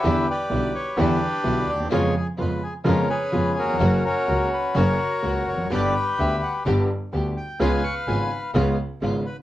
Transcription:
Already playing: bandoneon G4 B4 E5
0.04 grand piano E2 D3 E3 G3 B3 E4, double bass E2, string section G3 D4 E4
0.30 bandoneon G4 B4 D5
0.50 grand piano B1 B2 D3 G3 B3 E4, double bass B1, string section G3 D4 E4
0.75 bandoneon C#5
0.97 grand piano E2 D3 E3 G3 B3 E4, double bass E2, string section G3 D4 E4, bandoneon D4 G4 B4
1.44 grand piano B1 B2 D3 G3 B3 E4, double bass B1, string section G3 D4 E4
1.68 double bass D#2, bandoneon D5
1.73 grand piano D2
1.80 grand piano D#2
1.85 grand piano E2
1.91 double bass F2, grand piano F2 C#3 F3 G#3 B3 F4, string section B3 C#4 F4, bandoneon G#4 C#5
2.17 bandoneon G#4
2.38 grand piano F2 C#3 F3 G#3 B3 F4, double bass F2, string section B3 C#4 F4, bandoneon B4
2.63 bandoneon G#4
2.84 grand piano F2 C#3 F3 G#3 B3 F4, double bass F2, string section B3 C#4 F4, bandoneon C#4 A#4
3.10 bandoneon G#4 B4
3.32 grand piano F2 C#3 F3 G#3 B3 F4, double bass F2, string section B3 C#4 F4
3.59 bandoneon C#4 F#4 A#4
3.63 grand piano D#2
3.68 grand piano E2
3.74 grand piano F2
3.80 double bass F#1, grand piano F#2 C#3 F#3 A#3 F#4, string section A#3 C#4 F#4
4.05 bandoneon C#4 F#4 A#4
4.27 grand piano C#2 C#3 F#3 A#3 F#4, double bass C#2, string section A#3 C#4 F#4
4.53 bandoneon B4
4.74 double bass F#1, grand piano F#2 C#3 F#3 A#3 F#4, string section A#3 C#4 F#4, bandoneon F#4 A#4 C#5
5.22 grand piano C#2 C#3 F#3 A#3 F#4, double bass C#2, string section A#3 C#4 F#4
5.48 double bass F1, bandoneon C#5
5.53 grand piano E2
5.58 grand piano F2
5.65 grand piano F#2
5.70 grand piano G1 G2 D3 G3 B3 G4, double bass G1, string section B3 D4 G4, bandoneon G4 B4 D5
5.97 bandoneon G5
6.18 grand piano D2 D3 G3 B3 G4, double bass D2, string section B3 D4 G4, bandoneon E5
6.43 bandoneon F#5
6.66 double bass G1, grand piano G1 G2 D3 G3 B3 G4, string section B3 D4 G4
7.13 grand piano D2 D3 G3 B3 G4, double bass D2, string section B3 D4 G4
7.37 bandoneon G5
7.60 grand piano C#2 C#3 G#3 B3 F4, double bass C#2, string section B3 C#4 F4, bandoneon B4 F5 G#5
7.84 bandoneon C#6
8.07 double bass G#1, grand piano G#1 G#2 C#3 G#3 B3 F4, string section B3 C#4 F4, bandoneon G#5
8.31 bandoneon B5
8.55 double bass C#2, grand piano C#2 C#3 G#3 B3 F4, string section B3 C#4 F4
9.01 double bass G#1, grand piano G#1 G#2 C#3 G#3 B3 F4, string section B3 C#4 F4
9.26 bandoneon B4

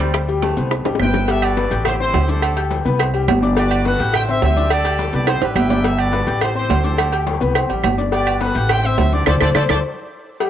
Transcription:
Already playing: upright bass D2
0.00 baritone saxophone G3, grand piano C4 C5 D5, high conga, high timbale, maracas
0.14 high bongo, high conga, high timbale, claves, maracas
0.28 grand piano G3 G4 G5, high bongo, high conga, maracas
0.42 baritone saxophone A3, high bongo, high conga, high timbale, low timbale, maracas
0.57 upright bass C2, grand piano B3 B4 C5, high bongo, maracas
0.71 high bongo, high conga, high timbale, claves, maracas
0.85 upright bass A1, grand piano G3 G4 G5, high bongo, high timbale, maracas
0.95 high bongo
0.99 upright bass G1, grand piano B3 B4 C5, trumpet section B4 E5 G5, high conga, low timbale, claves, maracas
1.05 low bongo
1.14 low bongo, high conga, low timbale, maracas
1.28 grand piano G3 G4 G5, trumpet section A4 B4 E5, cowbell, high conga, low agogo, maracas
1.42 trumpet section F#4 B4 D5, high conga, low agogo, claves, maracas
1.57 grand piano B3 B4 B5, cowbell, high conga, low timbale, maracas
1.71 upright bass A1, grand piano G4 G5 G6, cowbell, high conga, maracas
1.85 trumpet section E4 G4 C5, cowbell, high conga, low conga, low agogo, claves, maracas
2.00 grand piano C4 C5 C6, trumpet section E4 G4 C5, high conga, maracas
2.13 upright bass D2, cowbell, high conga, low timbale, low agogo, maracas
2.28 grand piano D4 D5 D6, trumpet section G4 A4 C5, high conga, maracas
2.42 cowbell, high conga, low agogo, claves, maracas
2.56 grand piano G4 G5 G6, cowbell, high conga, low agogo, maracas
2.70 cowbell, high conga, low timbale, maracas
2.85 upright bass C2, grand piano B3 B4 B5, maracas
2.99 grand piano C4 C5 C6, cowbell, low agogo, claves, maracas
3.13 grand piano G3 G4 G5, high conga, low agogo, maracas
3.28 upright bass G1, cowbell, high conga, low timbale, low agogo, claves, maracas
3.42 grand piano D4 D5 D6, high conga, maracas
3.57 grand piano G3 G4 G5, trumpet section F#4 B4 D5, cowbell, low agogo, maracas
3.71 low agogo, claves, maracas
3.85 grand piano B3 B4 B5, trumpet section A4 B4 F#5, cowbell, high conga, low timbale, maracas
3.99 upright bass A1, grand piano G4 G5 G6, cowbell, high conga, maracas
4.13 trumpet section C5 E5 G5, cowbell, high conga, low conga, low agogo, claves, maracas
4.28 grand piano C4 C5 C6, trumpet section E5, high conga, low conga, maracas
4.42 upright bass D2, trumpet section G4 C5 E5, cowbell, high conga, low timbale, low agogo, maracas
4.56 grand piano D4 D5 D6, high conga, maracas
4.70 trumpet section G4 A4 D5, cowbell, high conga, low agogo, claves, maracas
4.85 grand piano G4 G5 G6, cowbell, high conga, low agogo, maracas
4.99 cowbell, high conga, low timbale, maracas
5.13 upright bass C2, grand piano B3 B4 B5, trumpet section D5, maracas
5.27 grand piano C4 C5 C6, trumpet section E4 G4 C5, cowbell, high conga, high timbale, low agogo, claves, maracas
5.41 upright bass A1, grand piano G3 G4 G5, trumpet section B4, high conga, high timbale, low agogo, maracas
5.55 upright bass G1, trumpet section B4 E5 G5, cowbell, high conga, low timbale, low agogo, claves, maracas
5.69 grand piano D4 D5 D6, high conga, low timbale, maracas
5.84 grand piano G3 G4 G5, trumpet section A4 B4 E5, cowbell, high conga, low agogo, maracas
5.98 trumpet section F#4 B4 D5, high conga, low agogo, claves, maracas
6.12 grand piano B3 B4 B5, cowbell, high conga, low timbale, maracas
6.27 upright bass A1, grand piano G4 G5 G6, cowbell, high conga, maracas
6.41 trumpet section E4 G4 C5, cowbell, high conga, low conga, low agogo, claves, maracas
6.55 grand piano C4 C5 C6, trumpet section E4 G4 C5, high conga, maracas
6.70 upright bass D2, cowbell, high conga, low timbale, low agogo, maracas
6.84 grand piano D4 D5 D6, trumpet section G4 A4 C5, high conga, maracas
6.98 cowbell, high conga, low agogo, claves, maracas
7.12 grand piano G4 G5 G6, cowbell, high conga, low agogo, maracas
7.26 cowbell, high conga, low timbale, maracas
7.40 upright bass C2, grand piano B3 B4 B5, maracas
7.55 grand piano C4 C5 C6, cowbell, high conga, low agogo, claves, maracas
7.69 upright bass A1, grand piano G3 G4 G5, high conga, low agogo, maracas
7.84 upright bass G1, cowbell, high conga, low timbale, low agogo, claves, maracas
7.98 grand piano D4 D5 D6, high conga, maracas
8.12 grand piano G3 G4 G5, trumpet section F#4 B4 D5, cowbell, high conga, low agogo, maracas
8.27 high conga, low agogo, claves, maracas
8.41 grand piano B3 B4 B5, trumpet section A4 B4 F#5, cowbell, high conga, low timbale, maracas
8.55 upright bass A1, grand piano G4 G5 G6, cowbell, high conga, maracas
8.69 trumpet section C5 E5 G5, cowbell, high conga, low conga, low agogo, claves, maracas
8.84 grand piano C4 C5 C6, trumpet section E5, high conga, maracas
8.98 upright bass D2, trumpet section E5, cowbell, high conga, low timbale, low agogo, maracas
9.12 grand piano D4 D5 D6, trumpet section G4 A4 D5, high conga, maracas
9.26 upright bass D2, grand piano A4 C5 D5, trumpet section A4 C5 D5, cowbell, high conga, high timbale, claves, maracas
9.40 upright bass D2, grand piano A4 C5 D5, trumpet section A4 C5 D5, cowbell, high conga, high timbale, claves, maracas
9.54 upright bass D2, grand piano A4 C5 D5, trumpet section A4 C5 D5, cowbell, high conga, high timbale, claves, maracas
9.69 upright bass D2, grand piano A4 C5 D5, trumpet section A4 C5 D5, cowbell, high conga, high timbale, claves, maracas
10.40 grand piano G3 G4 G5, cowbell, high conga, low agogo

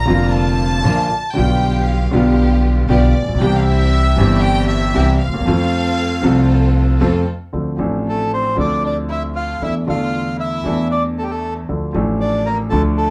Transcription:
Already playing: violin section A#5
0.06 grand piano F1 F2 D3 F3 A#3, upright bass F1, string section A#3 D4 F4
0.10 grand piano F4
0.31 violin section A5
0.84 grand piano A#1 A#2 D3 F3 A#3 F4, upright bass A#1, string section A#3 D4 F4
1.33 grand piano B1 B2 D3 G3 B3, string section B3 F4 G4, violin section G5
1.38 upright bass B1, grand piano F4
1.87 violin section F5
2.11 upright bass B1, grand piano B1 B2 D3 G3 B3 F4, string section B3 F4 G4
2.88 upright bass B1, grand piano B1 B2 D3 G3 B3 F4, string section B3 F4 G4, violin section D5
3.21 upright bass A1, grand piano A1
3.28 upright bass A#1, grand piano A#1
3.35 upright bass B1, grand piano B1
3.39 grand piano C2 C3 E3 G3 C4 G4, upright bass C2, string section C4 E4 G4, violin section G5
3.58 violin section F5
3.64 violin section E5
4.16 upright bass G1, grand piano G1 G2 E3 G3 C4, string section C4 E4 G4
4.20 grand piano G4
4.42 violin section G5
4.68 violin section E5
4.94 grand piano C2 C3 E3 G3 C4 G4, upright bass C2, string section C4 E4 G4
5.20 violin section F5
5.27 grand piano D2, upright bass D2
5.34 grand piano D#2, upright bass D#2
5.41 upright bass E2, grand piano E2
5.45 grand piano F2 F3 A3 C4 A4, upright bass F2, string section C4 F4 A4
6.22 upright bass C2, grand piano C2 C3 F3 A3 C4, string section C4 F4 A4
6.26 grand piano A4
7.00 grand piano F2 F3 A3 C4 A4, upright bass F2, string section C4 F4 A4
7.53 grand piano D2 D3 F3 C4 D4 A4, upright bass D2
7.77 upright bass A1, grand piano A1 A2 F3 C4 D4
7.81 grand piano A4
8.07 violin section A3, bandoneon A4
8.34 violin section C4, bandoneon C5
8.55 grand piano D2 D3 F3 C4 D4, upright bass D2, violin section D4
8.60 grand piano A4, bandoneon D5
8.84 violin section D4, bandoneon D5
9.09 violin section E4, bandoneon E5
9.35 violin section F4, bandoneon F5
9.62 upright bass E2, grand piano E2 E3 A3 D4 A4, violin section E4, bandoneon E5
9.87 grand piano E2 D3 A3 D4 A4, upright bass E2, violin section F4, bandoneon F5
10.40 violin section E4, bandoneon E5
10.63 grand piano E2 E3 A3 D4, upright bass E2
10.68 grand piano A4
10.91 violin section D4, bandoneon D5
11.18 violin section A3, bandoneon A4
11.23 violin section G3, bandoneon G4
11.30 violin section A3, bandoneon A4
11.69 grand piano D2 D3 F3 A3 D4 A4, upright bass D2
11.93 upright bass A1, grand piano A1 A2 F3 A3 D4
11.97 grand piano A4
12.20 violin section D4, bandoneon D5
12.46 violin section A#3, bandoneon A#4
12.70 upright bass D2, grand piano D2 D3 F3 A3 D4, violin section A3, bandoneon A4
12.74 grand piano A4
12.96 violin section A3, bandoneon A4

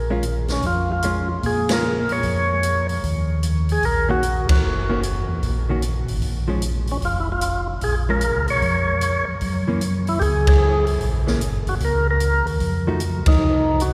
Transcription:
Already playing: tonewheel organ A#1
0.10 hollow-body jazz guitar G#3 C#4 F4
0.23 closed hi-hat
0.48 snare, open hi-hat
0.52 tonewheel organ C#4
0.62 tonewheel organ F2, kick, open hi-hat
0.67 tonewheel organ F4
0.92 tonewheel organ F4
1.02 hollow-body jazz guitar G#3 C#4 F4, closed hi-hat
1.43 tonewheel organ A#2 G#4, kick, open hi-hat
1.69 hollow-body jazz guitar G#3 C#4 F4, tonewheel organ A#4, snare, ride
2.09 tonewheel organ C#5, open hi-hat
2.23 tonewheel organ F2, kick, open hi-hat
2.63 closed hi-hat
2.89 open hi-hat
3.03 tonewheel organ D#2, kick, open hi-hat
3.43 closed hi-hat
3.69 tonewheel organ G#4, open hi-hat
3.83 tonewheel organ A#1 A#4, kick, open hi-hat
4.09 hollow-body jazz guitar D#3 A#3 C#4 F#4, tonewheel organ F#4
4.23 closed hi-hat
4.49 tonewheel organ E2 F#4, kick, ride
4.63 tonewheel organ F#1
4.90 hollow-body jazz guitar D#3 A#3 C#4 F#4
5.03 closed hi-hat
5.29 tonewheel organ E2
5.43 tonewheel organ A#1, kick, open hi-hat
5.69 hollow-body jazz guitar D#3 A#3 C#4 F#4
5.82 closed hi-hat
6.08 tonewheel organ G#1, open hi-hat
6.22 tonewheel organ A#1, kick, open hi-hat
6.48 hollow-body jazz guitar F3 G#3 C#4
6.62 closed hi-hat
6.87 open hi-hat
6.92 tonewheel organ C#4
7.02 tonewheel organ F1 F4, kick, open hi-hat
7.20 tonewheel organ E4
7.32 tonewheel organ F4
7.41 closed hi-hat
7.81 tonewheel organ A#1 G#4, kick, open hi-hat
8.09 hollow-body jazz guitar F3 G#3 C#4, tonewheel organ A#4
8.21 closed hi-hat
8.36 tonewheel organ C#2
8.48 tonewheel organ B1 C#5, open hi-hat
8.62 tonewheel organ F2, kick, open hi-hat
9.01 closed hi-hat
9.28 tonewheel organ F2
9.41 tonewheel organ F#2, kick, open hi-hat
9.68 hollow-body jazz guitar E3 A#3 C#4
9.81 closed hi-hat
10.07 tonewheel organ E4, open hi-hat
10.19 tonewheel organ C#2 G4 G#4, kick, open hi-hat
10.47 tonewheel organ G#4, kick, ride
10.87 open hi-hat
11.01 tonewheel organ A#1, kick, open hi-hat
11.27 hollow-body jazz guitar E3 A#3 C#4, snare
11.41 tonewheel organ G1, closed hi-hat
11.67 tonewheel organ F#4, open hi-hat
11.80 tonewheel organ C#2, kick, open hi-hat
11.85 tonewheel organ A#4
12.11 tonewheel organ A#4
12.20 closed hi-hat
12.46 tonewheel organ D#2, open hi-hat
12.60 tonewheel organ F2, kick, open hi-hat
12.87 hollow-body jazz guitar F3 A3 D#4 F#4
13.00 closed hi-hat
13.26 tonewheel organ E2 D#4, kick, ride
13.40 tonewheel organ C2
13.80 tonewheel organ F#4, closed hi-hat

